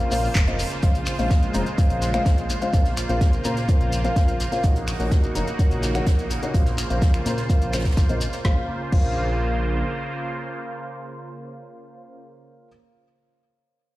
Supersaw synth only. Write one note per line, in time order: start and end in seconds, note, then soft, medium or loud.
0.00 4.60 C#3 medium
0.00 0.79 A#3 medium
0.00 2.70 F4 medium
0.00 4.60 C5 medium
0.83 2.72 G#3 medium
2.73 4.62 A#3 medium
2.73 4.62 F4 medium
4.64 8.41 C#3 medium
4.64 8.41 A#3 medium
4.64 6.52 D#4 medium
4.64 6.52 F#4 medium
6.54 8.43 F4 medium
6.54 8.43 C5 medium
8.45 12.20 C#3 medium
8.45 12.20 A#3 medium
8.45 12.20 F4 medium
8.45 12.20 C5 medium